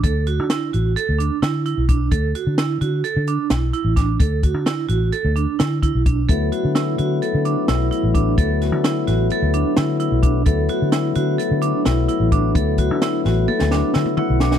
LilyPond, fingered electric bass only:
\new Staff \with { instrumentName = "Fingered electric bass" } { \clef bass \time 9/8 \key d \major \tempo 4. = 86 d,8. d8. a,,8 r16 d,8 r16 d8. b,,8. | d,8 r16 d8. d8 r16 d8 r16 b,,8 r16 a,,8. | d,8. d8. a,,8 r16 d,8 r16 d8. b,,8. | d,8 r16 d8. d8 r16 d8 r16 b,,8 r16 a,,8. |
d,8. d8. a,,8 r16 d,8 r16 d8. b,,8. | d,8 r16 d8. d8 r16 d8 r16 b,,8 r16 a,,8. | d,8. d8. a,,8 r16 d,8 r16 d8. b,,8. | }